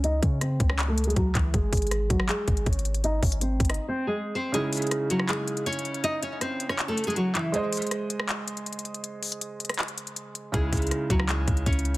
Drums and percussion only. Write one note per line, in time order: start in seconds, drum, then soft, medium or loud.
0.04 closed hi-hat medium
0.23 kick loud
0.23 closed hi-hat medium
0.41 cross-stick medium
0.41 closed hi-hat medium
0.60 kick medium
0.60 closed hi-hat medium
0.70 cross-stick loud
0.79 clap loud
0.79 closed hi-hat medium
0.98 closed hi-hat medium
1.04 closed hi-hat medium
1.10 closed hi-hat soft
1.16 kick medium
1.16 closed hi-hat medium
1.35 kick loud
1.35 clap medium
1.35 closed hi-hat medium
1.54 kick loud
1.54 closed hi-hat medium
1.73 kick loud
1.73 closed hi-hat medium
1.73 open hi-hat medium
1.77 closed hi-hat medium
1.82 closed hi-hat medium
1.87 closed hi-hat soft
1.91 cross-stick medium
1.91 closed hi-hat medium
2.10 kick loud
2.10 closed hi-hat medium
2.20 cross-stick loud
2.29 clap loud
2.29 closed hi-hat medium
2.48 kick loud
2.48 closed hi-hat medium
2.57 closed hi-hat soft
2.66 kick medium
2.66 closed hi-hat medium
2.73 closed hi-hat medium
2.79 closed hi-hat medium
2.85 closed hi-hat medium
2.94 closed hi-hat medium
3.04 closed hi-hat medium
3.23 kick loud
3.23 closed hi-hat soft
3.23 open hi-hat medium
3.32 closed hi-hat medium
3.41 closed hi-hat medium
3.60 kick loud
3.60 closed hi-hat medium
3.65 closed hi-hat medium
3.70 cross-stick medium
3.70 closed hi-hat medium
3.74 closed hi-hat medium
4.54 closed hi-hat medium
4.73 closed hi-hat medium
4.73 open hi-hat medium
4.77 closed hi-hat medium
4.82 closed hi-hat medium
4.87 closed hi-hat soft
4.91 cross-stick medium
4.91 closed hi-hat medium
5.10 closed hi-hat medium
5.20 cross-stick medium
5.29 clap loud
5.29 closed hi-hat medium
5.48 closed hi-hat medium
5.57 closed hi-hat soft
5.66 closed hi-hat medium
5.73 closed hi-hat medium
5.79 closed hi-hat medium
5.85 closed hi-hat medium
5.94 closed hi-hat medium
6.04 closed hi-hat medium
6.23 closed hi-hat medium
6.41 cross-stick medium
6.41 closed hi-hat medium
6.60 closed hi-hat medium
6.69 cross-stick medium
6.79 clap loud
6.79 closed hi-hat medium
6.98 closed hi-hat medium
7.04 closed hi-hat medium
7.10 closed hi-hat soft
7.16 closed hi-hat medium
7.35 clap medium
7.35 closed hi-hat medium
7.54 closed hi-hat medium
7.73 closed hi-hat medium
7.73 open hi-hat medium
7.77 closed hi-hat medium
7.82 closed hi-hat medium
7.87 closed hi-hat soft
7.91 cross-stick medium
7.91 closed hi-hat medium
8.10 closed hi-hat medium
8.20 cross-stick loud
8.29 clap loud
8.29 closed hi-hat medium
8.48 closed hi-hat medium
8.57 closed hi-hat soft
8.66 closed hi-hat medium
8.73 closed hi-hat medium
8.79 closed hi-hat medium
8.85 closed hi-hat medium
8.94 closed hi-hat medium
9.04 closed hi-hat medium
9.23 closed hi-hat soft
9.23 open hi-hat medium
9.32 closed hi-hat medium
9.41 closed hi-hat medium
9.60 closed hi-hat medium
9.65 closed hi-hat medium
9.69 cross-stick medium
9.69 closed hi-hat medium
9.74 closed hi-hat medium
9.79 clap loud
9.79 closed hi-hat medium
9.88 closed hi-hat medium
9.98 closed hi-hat medium
10.07 closed hi-hat soft
10.16 closed hi-hat medium
10.35 closed hi-hat medium
10.54 kick loud
10.54 closed hi-hat medium
10.73 kick loud
10.73 closed hi-hat medium
10.73 open hi-hat medium
10.77 closed hi-hat medium
10.82 closed hi-hat medium
10.87 closed hi-hat soft
10.91 cross-stick medium
10.91 closed hi-hat medium
11.10 kick loud
11.10 closed hi-hat medium
11.20 cross-stick loud
11.29 clap loud
11.29 closed hi-hat medium
11.48 kick loud
11.48 closed hi-hat medium
11.57 closed hi-hat soft
11.66 kick medium
11.66 closed hi-hat medium
11.73 closed hi-hat medium
11.79 closed hi-hat medium
11.85 closed hi-hat medium
11.94 closed hi-hat medium